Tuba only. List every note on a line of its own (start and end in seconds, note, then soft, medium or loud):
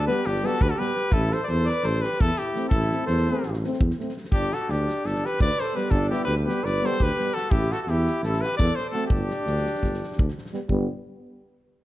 0.25 0.45 G1 medium
0.61 0.71 D2 loud
1.13 1.33 A1 loud
1.49 1.69 E2 loud
1.84 2.04 A1 loud
2.21 2.31 E2 loud
2.72 2.92 A1 loud
3.08 3.28 E2 loud
3.45 3.65 A1 medium
3.80 3.90 E2 loud
4.32 4.52 G1 medium
4.68 4.88 D2 loud
5.04 5.24 G1 medium
5.40 5.50 D2 loud
5.91 6.11 G1 loud
6.27 6.47 D2 loud
6.63 6.83 G1 loud
7.00 7.10 D2 loud
7.50 7.70 A1 loud
7.87 8.07 E2 loud
8.22 8.43 A1 loud
8.59 8.69 E2 loud
9.11 9.30 G1 loud
9.46 9.66 D2 loud
9.82 10.02 G1 medium
10.18 10.28 D2 medium
10.69 10.87 G1 loud